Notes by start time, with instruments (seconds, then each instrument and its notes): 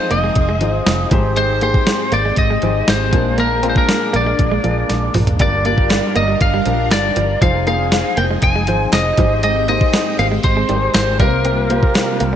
Already playing: string machine F3 C4 D#4 G#4, grand piano D#4 F4 G#4 C5 D#5, lead electric guitar C5
0.11 fingered electric bass F1, clean electric guitar A#3, lead electric guitar D#5, closed hi-hat
0.24 clean electric guitar G#3
0.35 fingered electric bass F1, muted clean electric guitar stroke, kick, closed hi-hat
0.49 clean electric guitar G#3
0.61 fingered electric bass G#1, clean electric guitar F3, grand piano D#4 F4 G#4 C5, closed hi-hat
0.86 fingered electric bass F1, snare, closed hi-hat
1.11 fingered electric bass G#1, grand piano G#2 D#4 G4 G#4 C5, clean electric guitar F3, string machine G#3 C4 G5, kick, closed hi-hat
1.36 clean electric guitar G#3, lead electric guitar C5, closed hi-hat
1.49 muted clean electric guitar stroke
1.61 clean electric guitar A#3, grand piano D#4 G4 G#4 C5, lead electric guitar C5, closed hi-hat
1.74 kick
1.87 muted clean electric guitar stroke, snare, closed hi-hat
2.12 fingered electric bass G#1, clean electric guitar A#3, lead electric guitar D5, closed hi-hat
2.25 clean electric guitar G#3
2.36 fingered electric bass G#1, lead electric guitar D#5, muted clean electric guitar stroke, kick, closed hi-hat
2.50 clean electric guitar G#3
2.62 fingered electric bass G#1, clean electric guitar F3, grand piano D#4 G4 G#4 C5, closed hi-hat
2.88 fingered electric bass G#1, lead electric guitar C5, snare, closed hi-hat
3.12 fingered electric bass A#1, grand piano A#2 D4 F4 G#4 A#4, clean electric guitar F3, string machine A#3 D4, kick, closed hi-hat
3.38 clean electric guitar A#3, lead electric guitar A#4, closed hi-hat
3.51 muted clean electric guitar stroke
3.63 clean electric guitar C4, grand piano D4 F4 G#4 A#4, closed hi-hat
3.69 lead electric guitar C5
3.76 lead electric guitar A#4, kick
3.89 muted clean electric guitar stroke, snare, closed hi-hat
4.13 fingered electric bass A#1, clean electric guitar A#3, lead electric guitar D5, closed hi-hat
4.27 clean electric guitar G#3
4.39 fingered electric bass A#1, muted clean electric guitar stroke, kick, closed hi-hat
4.52 clean electric guitar G#3
4.64 fingered electric bass A#1, clean electric guitar F3, grand piano D4 F4 G#4 A#4, closed hi-hat
4.89 fingered electric bass A#1, snare, closed hi-hat
5.14 fingered electric bass A#1, clean electric guitar F3, mid tom, open hi-hat
5.27 closed hi-hat, floor tom
5.39 fingered electric bass G1, grand piano G2 D4 F4 G4 A#4, clean electric guitar G3, string machine G3 D4 F4 A#4, lead electric guitar D5, kick, closed hi-hat
5.53 muted clean electric guitar stroke
5.64 clean electric guitar A#3, grand piano D4 F4 G4 A#4, lead electric guitar D5, closed hi-hat
5.78 kick
5.90 muted clean electric guitar stroke, snare, clap, closed hi-hat
6.16 fingered electric bass G1, clean electric guitar A#3, lead electric guitar D#5, closed hi-hat
6.28 clean electric guitar G3
6.41 fingered electric bass G1, lead electric guitar F5, muted clean electric guitar stroke, kick, closed hi-hat
6.54 clean electric guitar G3
6.65 fingered electric bass A#1, clean electric guitar F3, grand piano D4 F4 G4 A#4, closed hi-hat
6.91 fingered electric bass G1, lead electric guitar D5, snare, clap, closed hi-hat
7.16 fingered electric bass G1, clean electric guitar F3, closed hi-hat
7.41 fingered electric bass F1, string machine F3 C4 D#4 G#4, clean electric guitar F3, grand piano D#4 F4 G#4 C5, lead electric guitar F5, kick, closed hi-hat
7.55 muted clean electric guitar stroke
7.66 clean electric guitar A#3, grand piano D#4 F4 G#4 C5, lead electric guitar F5, closed hi-hat
7.92 muted clean electric guitar stroke, snare, clap, closed hi-hat
8.17 fingered electric bass F1, clean electric guitar A#3, lead electric guitar G5, closed hi-hat
8.31 clean electric guitar G#3
8.42 fingered electric bass F1, lead electric guitar G#5, muted clean electric guitar stroke, kick, closed hi-hat
8.56 clean electric guitar G#3
8.67 fingered electric bass G#1, clean electric guitar F3, grand piano D#4 F4 G#4 C5, closed hi-hat
8.93 fingered electric bass F1, lead electric guitar D#5, snare, clap, closed hi-hat
9.17 fingered electric bass G#1, grand piano G#2 D#4 G4 G#4 C5, clean electric guitar F3, string machine G#3 G5, kick, closed hi-hat
9.43 clean electric guitar G#3, lead electric guitar D#5, closed hi-hat
9.56 muted clean electric guitar stroke
9.68 clean electric guitar A#3, grand piano D#4 G4 G#4 C5, lead electric guitar D#5, closed hi-hat
9.81 kick
9.94 muted clean electric guitar stroke, snare, clap, closed hi-hat
10.19 fingered electric bass G#1, clean electric guitar A#3, lead electric guitar F5, closed hi-hat
10.32 clean electric guitar G#3
10.43 fingered electric bass G#1, lead electric guitar C5, muted clean electric guitar stroke, kick, closed hi-hat
10.57 clean electric guitar G#3
10.69 fingered electric bass G#1, clean electric guitar G3, grand piano D#4 G4 G#4 A#4, closed hi-hat
10.76 grand piano C5
10.94 fingered electric bass G#1, lead electric guitar C5, snare, clap, closed hi-hat
11.19 fingered electric bass C2, grand piano C3 F4 G4 A#4 B4, string machine C3 G3 A#3 F4, clean electric guitar G3, lead electric guitar A#4, kick, closed hi-hat
11.26 grand piano C5
11.45 clean electric guitar C4, closed hi-hat
11.58 muted clean electric guitar stroke
11.69 clean electric guitar A#3, grand piano F4 G4 A#4 C5, closed hi-hat
11.83 kick
11.95 muted clean electric guitar stroke, snare, clap, closed hi-hat
12.20 fingered electric bass C2, clean electric guitar A#3, closed hi-hat